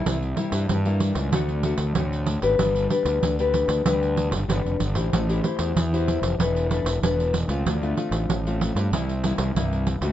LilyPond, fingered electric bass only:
\new Staff \with { instrumentName = "Fingered electric bass" } { \clef bass \time 4/4 \key c \major \tempo 4 = 95 c,8 r16 g,16 g,8. des,16 d,8. d,16 d,8. aes,,16 | g,,8 r16 d,16 d,8. d,16 d,8. g,,16 g,,16 f,,16 g,,16 a,,16 | a,,8 r16 e,16 e,8. f,,16 e,,8. e,,16 e,,8. des,16 | d,8 r16 a,,16 a,,8. g,16 c,8. c,16 c,8. des,16 | }